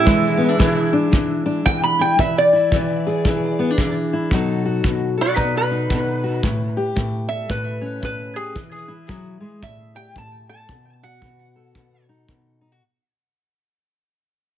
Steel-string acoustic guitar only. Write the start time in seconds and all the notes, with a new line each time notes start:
0.05 E3 G#3 D4
0.37 B3
0.49 D4
0.59 E3
0.93 D4
1.12 E3
1.46 D4
1.65 E3
1.99 E4
2.19 E3
2.53 E4
2.73 E3
3.07 G#4
3.28 E3
3.59 B3
3.70 D4
3.79 E3
4.13 E4
4.32 B2 F#3 D#4 F#4 A4
4.65 F#4
4.84 B2
5.18 A4
5.38 B2
5.71 D#4
5.90 B2
6.24 F#4
6.44 A2
6.77 G4
6.96 A2
7.30 A4
7.49 A2
7.81 C#4
8.02 A2
8.36 G4
8.55 E3
8.88 E4
9.08 F#3
9.40 G#3
9.63 A2
9.95 G4
10.16 A2
10.50 A4
10.70 B2
11.03 F#4
11.23 B2
11.56 A4
11.75 B2
12.09 D#4
12.28 B2
12.61 D#4
12.72 F#4